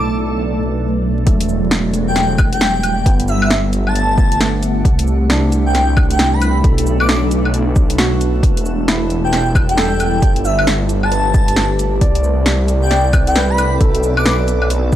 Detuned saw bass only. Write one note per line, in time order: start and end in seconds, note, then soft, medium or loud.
0.00 1.25 B1 medium
1.27 3.04 E1 medium
3.06 4.83 G1 medium
4.85 6.62 C2 medium
6.64 8.42 B1 medium
8.43 10.21 E1 medium
10.22 12.00 G1 medium
12.01 13.79 C2 medium
13.81 14.96 B1 medium